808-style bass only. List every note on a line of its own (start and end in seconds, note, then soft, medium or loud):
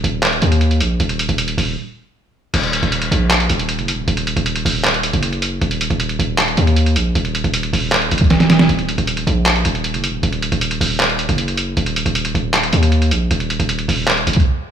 0.04 0.41 D#1 loud
0.42 0.82 D#2 loud
0.81 0.99 A#1 loud
1.00 1.28 D#1 loud
1.29 1.56 D#1 loud
1.58 1.76 D#1 loud
2.54 2.81 D#1 loud
2.83 3.10 D#1 loud
3.11 3.48 A#1 loud
3.50 3.80 D#1 loud
3.79 3.95 F#1 loud
3.93 4.07 D#1 loud
4.08 4.35 D#1 loud
4.36 4.64 D#1 loud
4.65 5.11 D#1 loud
5.13 5.59 F#1 loud
5.61 5.89 D#1 loud
5.90 6.18 D#1 loud
6.19 6.56 D#1 loud
6.58 6.98 D#2 loud
6.96 7.14 A#1 loud
7.15 7.43 D#1 loud
7.44 7.72 D#1 loud
7.73 8.10 D#1 loud
8.11 8.67 D#1 loud
8.69 8.97 D#1 loud
8.98 9.26 D#1 loud
9.27 9.64 A#1 loud
9.65 9.96 D#1 loud
9.94 10.10 F#1 loud
10.09 10.22 D#1 loud
10.23 10.51 D#1 loud
10.52 10.80 D#1 loud
10.81 11.27 D#1 loud
11.29 11.75 F#1 loud
11.77 12.05 D#1 loud
12.06 12.33 D#1 loud
12.35 12.71 D#1 loud
12.73 13.13 D#2 loud
13.11 13.30 A#1 loud
13.31 13.58 D#1 loud
13.60 13.87 D#1 loud
13.88 14.25 D#1 loud
14.27 14.45 D#1 loud